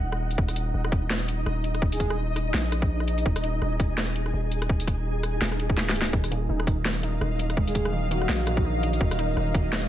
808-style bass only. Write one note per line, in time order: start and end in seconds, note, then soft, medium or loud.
0.00 0.37 D#1 loud
0.38 0.73 D#1 loud
0.74 1.45 D#1 loud
1.46 2.53 D#1 medium
2.54 3.25 A#1 loud
3.26 3.60 D#1 loud
3.62 4.32 D#1 loud
4.34 5.40 D#1 loud
5.41 6.12 D#1 loud
6.13 6.48 D#1 medium
6.49 7.20 D#1 loud
7.21 8.28 D#1 loud
8.29 8.99 A#1 loud
9.01 9.35 D#1 loud
9.37 9.88 D#1 loud